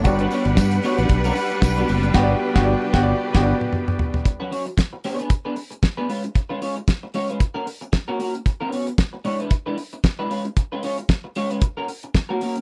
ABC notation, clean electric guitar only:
X:1
M:4/4
L:1/16
Q:"Swing 16ths" 1/4=114
K:Glyd
V:1 name="Clean electric guitar"
z [B,DFB] [B,DFc] z3 [B,DFc] [B,DFB] z [B,DFB]2 z2 [B,DFB] [B,DFB] z | [B,DFB]2 z [B,DF]2 z [B,DF]2 z [B,DFB]2 z4 z | [K:Bm] z [F,CFB] [F,CFc] z3 [B,D^Gc] [B,DGB] z [B,DGB]2 z2 [B,DGB] [^G,C^EB] z | z [^G,C^EB] [G,CEc] z3 [G,CEc] [G,CEB] z [^A,CF^A]2 z2 [A,CFA] [A,CFA] z |
z [B,CFB] [B,CFc] z3 [^G,DEc] [G,DEB] z [G,DEB]2 z2 [G,DEB] [G,C^EB] z | z [^G,C^EB] [G,CEc] z3 [G,CEc] [G,CEB] z [^A,CF^A]2 z2 [A,CFA] [A,CFA] z |]